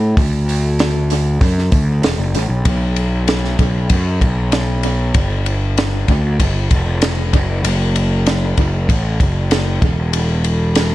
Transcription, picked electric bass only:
Already playing: A2
0.17 D2
1.41 F#2
1.72 D2
2.02 E1
2.18 F#1
2.34 A1
2.49 B1
2.65 B1
3.59 B1
3.90 F#2
4.21 B1
5.14 G1
6.08 D2
6.40 G1
6.71 F1
7.33 F#1
7.63 F#1
8.58 F#1
8.89 A1
9.20 F#1
9.82 E1

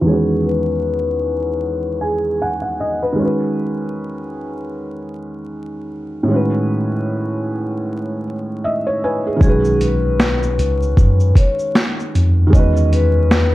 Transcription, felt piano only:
0.01 E2 D#3
0.06 G#3 C#4
0.11 F#4 B4
2.01 G#5
2.42 F#5 G#5
2.62 F#5
2.80 D#5
3.03 B4
3.13 D#3 G#3
3.19 C#4 F#4
3.25 B4
6.23 A2 D#3
6.28 G#3 C#4
6.33 F#4 B4
8.64 D#5 E5
8.87 C#5
9.04 B4 G#5
9.27 G#4
9.36 D#3 G#3
9.43 C#4 F#4
9.49 B4
12.47 D#3 G#3
12.53 C#4 F#4
12.59 B4

